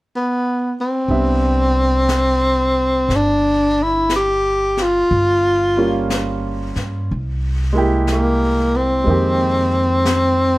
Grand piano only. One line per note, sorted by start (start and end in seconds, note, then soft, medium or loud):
1.10 5.11 G3 soft
1.10 5.11 B3 soft
1.10 5.11 D4 soft
1.10 5.11 E5 soft
5.77 7.09 G3 soft
5.77 7.10 A#3 soft
5.77 7.10 C#4 soft
5.77 7.10 F4 medium
7.73 9.02 G#3 medium
7.73 9.04 A#3 soft
7.73 9.07 E4 soft
7.78 9.08 G4 medium
9.04 10.58 G#3 soft
9.04 10.58 A#3 soft
9.08 10.58 D#3 soft
9.08 10.58 G4 medium